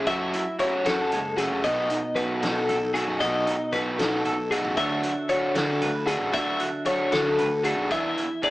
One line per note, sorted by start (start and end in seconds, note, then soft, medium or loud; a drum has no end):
0.00 1.13 A3 medium
0.07 0.31 F#1 medium
0.07 0.41 F#3 medium
0.07 0.87 F#3 medium
0.07 0.41 A3 medium
0.07 0.41 C#4 medium
0.07 0.42 F#4 medium
0.07 0.59 E5 medium
0.07 kick loud
0.07 closed hi-hat medium
0.33 0.59 E4 medium
0.33 closed hi-hat medium
0.59 0.84 F#3 medium
0.59 0.84 A3 medium
0.59 0.84 C#4 medium
0.59 0.74 E4 medium
0.59 0.83 F#4 medium
0.59 0.86 C#5 medium
0.59 kick medium
0.59 closed hi-hat medium
0.74 1.65 F#4 soft
0.84 1.14 F#2 medium
0.84 1.19 F#3 medium
0.84 1.13 F#3 medium
0.84 1.19 A3 medium
0.84 1.19 C#4 medium
0.84 1.19 F#4 medium
0.84 1.37 A4 medium
0.84 snare medium
0.84 closed hi-hat medium
1.12 1.47 F#1 medium
1.12 1.39 G#3 medium
1.12 closed hi-hat medium
1.36 1.62 F#3 medium
1.36 1.62 A3 medium
1.36 1.65 A3 medium
1.36 1.63 C#4 medium
1.36 1.63 F#4 medium
1.36 1.64 G#4 medium
1.36 closed hi-hat medium
1.52 1.66 F#2 medium
1.63 1.88 B1 loud
1.63 3.18 B2 medium
1.63 1.97 F#3 medium
1.63 1.98 A3 medium
1.63 1.98 D#4 medium
1.63 1.98 F#4 medium
1.63 2.16 D#5 medium
1.63 kick loud
1.63 closed hi-hat medium
1.90 2.42 D#4 medium
1.90 closed hi-hat medium
2.15 2.42 F#3 medium
2.15 2.42 A3 medium
2.15 2.42 D#4 medium
2.15 2.41 F#4 medium
2.15 2.95 F#4 medium
2.15 2.42 B4 medium
2.15 kick medium
2.15 closed hi-hat medium
2.42 2.70 B2 medium
2.42 2.77 F#3 medium
2.42 2.77 A3 medium
2.42 3.18 D#4 medium
2.42 2.77 D#4 medium
2.42 2.76 F#4 medium
2.42 2.94 A4 medium
2.42 snare loud
2.42 closed hi-hat medium
2.68 3.04 B1 medium
2.68 4.25 A4 medium
2.68 closed hi-hat medium
2.94 3.18 F#3 medium
2.94 3.19 A3 medium
2.94 3.19 D#4 medium
2.94 3.20 F#4 medium
2.94 3.72 F#4 medium
2.94 3.20 G#4 medium
2.94 closed hi-hat medium
3.07 3.22 F#2 medium
3.20 3.44 B1 medium
3.20 4.74 B2 medium
3.20 3.54 F#3 medium
3.20 3.54 A3 medium
3.20 3.55 D#4 medium
3.20 3.55 F#4 medium
3.20 3.73 D#5 medium
3.20 kick loud
3.20 closed hi-hat medium
3.46 3.97 D#4 medium
3.46 closed hi-hat medium
3.73 3.99 F#3 medium
3.73 3.99 A3 medium
3.73 3.99 D#4 medium
3.73 4.51 F#4 medium
3.73 3.98 F#4 medium
3.73 3.99 B4 medium
3.73 kick medium
3.73 closed hi-hat medium
3.99 4.27 B2 medium
3.99 4.34 F#3 medium
3.99 4.34 A3 medium
3.99 4.74 D#4 medium
3.99 4.34 D#4 medium
3.99 4.33 F#4 medium
3.99 4.50 A4 medium
3.99 snare loud
3.99 closed hi-hat medium
4.25 4.60 B1 medium
4.25 4.80 A4 medium
4.25 closed hi-hat medium
4.51 4.76 F#3 medium
4.51 4.76 A3 medium
4.51 4.77 D#4 medium
4.51 4.76 F#4 medium
4.51 4.79 F#4 medium
4.51 4.77 G#4 medium
4.51 closed hi-hat medium
4.64 4.77 A1 medium
4.77 5.01 D2 medium
4.77 6.32 D3 medium
4.77 5.11 F#3 medium
4.77 5.11 A3 medium
4.77 5.11 D4 medium
4.77 7.95 D4 soft
4.77 5.11 F#4 medium
4.77 5.03 F#4 medium
4.77 5.29 A4 soft
4.77 5.81 C#5 medium
4.77 5.29 E5 medium
4.77 kick loud
4.77 closed hi-hat medium
5.03 5.55 F#4 medium
5.03 closed hi-hat medium
5.29 5.55 F#3 medium
5.29 5.54 A3 medium
5.29 5.54 D4 medium
5.29 5.54 F#4 medium
5.29 6.07 A4 medium
5.29 5.55 C#5 medium
5.29 kick medium
5.29 closed hi-hat medium
5.55 5.83 D3 medium
5.55 5.90 F#3 medium
5.55 5.90 A3 medium
5.55 5.89 D4 medium
5.55 5.89 F#4 medium
5.55 6.31 F#4 medium
5.55 6.07 A4 medium
5.55 snare loud
5.55 closed hi-hat medium
5.81 6.17 D2 medium
5.81 6.31 B4 medium
5.81 closed hi-hat medium
6.06 6.31 F#3 medium
6.06 6.31 A3 medium
6.06 6.32 D4 medium
6.06 6.32 F#4 medium
6.06 6.34 G#4 medium
6.06 6.31 A4 medium
6.06 closed hi-hat medium
6.21 6.34 A1 medium
6.32 6.57 D2 medium
6.32 7.90 D3 medium
6.32 6.67 F#3 medium
6.32 6.67 A3 medium
6.32 6.68 D4 medium
6.32 6.68 F#4 medium
6.32 6.86 E5 medium
6.32 kick loud
6.32 closed hi-hat medium
6.60 7.11 F#4 medium
6.60 closed hi-hat medium
6.85 7.11 F#3 medium
6.85 7.11 A3 medium
6.85 7.10 D4 medium
6.85 7.10 F#4 medium
6.85 7.65 A4 medium
6.85 7.12 C#5 medium
6.85 kick medium
6.85 closed hi-hat medium
7.11 7.40 D3 medium
7.11 7.46 F#3 medium
7.11 7.46 A3 medium
7.11 7.46 D4 medium
7.11 7.46 F#4 medium
7.11 7.87 F#4 medium
7.11 7.65 A4 medium
7.11 snare medium
7.11 closed hi-hat medium
7.38 7.74 D2 medium
7.38 7.88 B4 medium
7.38 closed hi-hat medium
7.63 7.89 F#3 medium
7.63 7.90 A3 medium
7.63 7.90 D4 medium
7.63 7.90 F#4 medium
7.63 7.91 G#4 medium
7.63 7.88 A4 medium
7.63 closed hi-hat medium
7.78 7.91 B1 medium
7.90 8.15 E2 medium
7.90 8.24 E3 medium
7.90 8.50 E3 medium
7.90 8.25 B3 medium
7.90 8.25 D4 medium
7.90 8.25 G#4 medium
7.90 8.43 E5 medium
7.90 kick loud
7.90 closed hi-hat medium
8.17 8.50 E4 medium
8.17 closed hi-hat medium
8.42 8.50 E3 medium
8.42 8.50 B3 medium
8.42 8.50 D4 medium
8.42 8.50 G#4 medium
8.42 8.50 D5 medium
8.42 kick medium
8.42 closed hi-hat medium